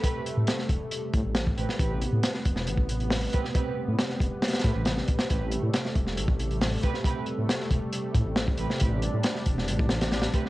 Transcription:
<<
  \new Staff \with { instrumentName = "String section" } { \time 4/4 \key a \minor \tempo 4 = 137 <a c' g' b'>8 r2. <a c' g' b'>8 | <a c' g' b'>8 r2. <a c' g' b'>8 | <a c' g' b'>8 r2 <a c' g' b'>8 r4 | <a c' g' b'>8 r2. <a c' g' b'>8 |
<a c' g' b'>8 r2. <a c' g' b'>8 | <a c' g' b'>8 r2. <a c' g' b'>8 | }
  \new Staff \with { instrumentName = "Analog synth pad" } { \time 4/4 \key a \minor << { a1 | b1~ | b1 | a1~ |
a1 | d'1 | } \\ { <c g>1~ | <c g>1~ | <c g>1~ | <c g>1~ |
<c g>1~ | <c g>1 | } >> }
  \new Staff \with { instrumentName = "Detuned saw bass" } { \clef bass \time 4/4 \key a \minor r8. a,16 r8 e,,16 r8. a,16 a,,8 r16 a,,16 r16 | a,,8 r16 a,16 r8 e,,8 a,,4~ a,,16 r8. | r8. a,16 r8 e,,16 r8. a,16 a,,8 r16 a,,16 r16 | a,,8 r16 a,16 r8 e,,8 a,,4~ a,,16 r8. |
r8. a,16 r8 e,,16 r8. a,16 a,,8 r16 a,,16 r16 | a,,8 r16 a,16 r8 e,,8 a,,4~ a,,16 r8. | }
  \new DrumStaff \with { instrumentName = "Drums" } \drummode { \time 4/4 <hh bd>8 hh8 <hh sn>16 sn16 <hh bd>8 hh8 <hh bd>8 <hh sn>16 bd16 hh16 sn16 | <hh bd>8 hh8 <hh sn>16 sn16 <hh bd>16 sn16 hh16 bd16 hh16 hh16 <hho sn>8 <hh bd>16 sn16 | <hh bd>4 <hh sn>16 sn16 <hh bd>8 <hh sn>32 <hh sn>32 <hh sn>32 <hh sn>32 <hh bd>8 <hh sn>16 sn16 <hh bd>16 <hh sn>16 | <hh bd>8 hh8 <hh sn>16 sn16 <hh bd>16 sn16 hh16 bd16 hh16 hh16 <hho sn>8 <hh bd>16 sn16 |
<hh bd>8 hh8 <hh sn>16 sn16 <hh bd>8 hh8 <hh bd>8 <hh sn>16 bd16 hh16 sn16 | <hh bd>8 hh8 <hh sn>16 sn16 <hh bd>16 sn16 hh16 bd16 <hh sn>16 <hh sn>16 <hh sn>16 <hh sn>16 <hh bd>16 sn16 | }
>>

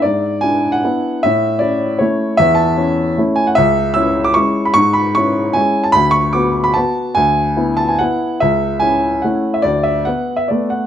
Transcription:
\new Staff \with { instrumentName = "Upright piano" } { \time 3/4 \key a \major \tempo 4 = 149 << { d''4 gis''8. fis''4~ fis''16 | e''4 d''4 cis''4 | e''8 a''4 r4 gis''16 fis''16 | e''4 e'''8. d'''16 cis'''8. b''16 |
cis'''8 b''8 cis'''4 gis''8. a''16 | b''8 cis'''8 d'''8. b''16 a''4 | gis''4. a''16 gis''16 fis''4 | e''4 gis''4 fis''8. e''16 |
d''8 e''8 fis''8. e''16 d''8 fis''8 | } \\ { gis,4 <d' e'>4 <b d' e'>4 | a,4 <cis' e'>4 <a cis' e'>4 | e,4 <cis' e'>4 <a cis' e'>4 | cis,4 <cis' e'>4 <gis cis' e'>4 |
gis,4 <cis' e'>4 <gis cis' e'>4 | d,4 <b fis'>4 <b fis'>4 | d,4 <b e'>4 <b e'>4 | cis,4 <cis' e'>4 <a cis' e'>4 |
d,4 <b b'>4 <a b b'>4 | } >> }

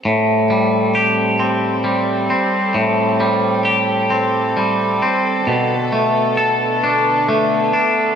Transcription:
<<
  \new Staff \with { instrumentName = "String section" } { \time 6/8 \key a \minor \tempo 4. = 44 << { a'2.~ | a'2.~ | a'2. | } \\ { <g c'>2.~ | <g c'>2. | <d b>2. | } >> }
  \new Staff \with { instrumentName = "Clean electric guitar" } { \time 6/8 \key a \minor a,8 g8 g'8 c'8 g8 c'8 | a,8 g8 g'8 c'8 g8 c'8 | b,8 a8 a'8 d'8 a8 d'8 | }
>>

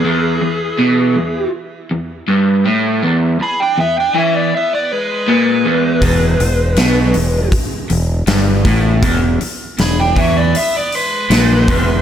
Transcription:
<<
  \new Staff \with { instrumentName = "Lead electric guitar" } { \time 4/4 \key e \mixolydian \tempo 4 = 80 gis'2 r2 | r8 b''16 g''16 e''16 g''16 e''16 d''16 e''16 d''16 b'8 b'4~ | b'2 r2 | r4 b''16 g''16 e''16 d''16 e''16 d''16 b'4. | }
  \new Staff \with { instrumentName = "Lead electric guitar" } { \time 4/4 \key e \mixolydian e2 r2 | r8 gis'16 d'16 b16 d'16 cis'16 b16 b16 b16 gis8 gis4~ | gis2 r2 | r4 gis'16 d'16 cis'16 b16 b16 b16 gis4. | }
  \new Staff \with { instrumentName = "Overdriven electric guitar" } { \clef bass \time 4/4 \key e \mixolydian e,8 e,8 b,8 e,8 r8 e,8 g,8 a,8 | e,8 r8 e,8 e8 r4 ais,8 e,8 | e,8 e,8 b,8 e,8 r8 e,8 g,8 a,8 | e,8 r8 e,8 e8 r4 ais,8 e,8 | }
  \new Staff \with { instrumentName = "Fingered electric bass" } { \clef bass \time 4/4 \key e \mixolydian r1 | r1 | e,,8 e,,8 b,,8 e,,8 r8 e,,8 g,,8 a,,8 | e,,8 r8 e,,8 e,8 r4 ais,,8 e,,8 | }
  \new DrumStaff \with { instrumentName = "Drums" } \drummode { \time 4/4 r4 r4 r4 r4 | r4 r4 r4 r4 | <hho bd>8 hho8 <hho sn>8 hho8 <hho bd>8 hho8 <hho sn>8 <hho bd>8 | <hho bd>8 hho8 <hho sn>8 <hho bd>8 hho8 hho8 <hho sn>8 <hho bd>8 | }
>>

